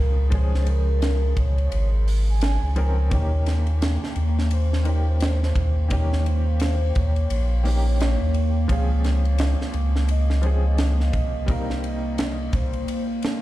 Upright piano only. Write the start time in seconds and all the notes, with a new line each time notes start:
Already playing: F3 C4 C#4 G#4
0.30 F3 G#3 C#4
0.34 G#4
2.76 F3 C4 C#4 A#4
3.10 D#3 A#3 C#4
3.14 G4
4.84 D#3 A#3 C#4
4.89 G4
5.89 D#3 A#3 C#4
5.93 G4
7.64 D#3 A#3 C#4
7.68 G4
8.68 F3 C4 C#4
8.72 G#4
10.42 F3 C4 C#4
10.46 G#4
11.46 G3 C4 D#4
11.51 A#4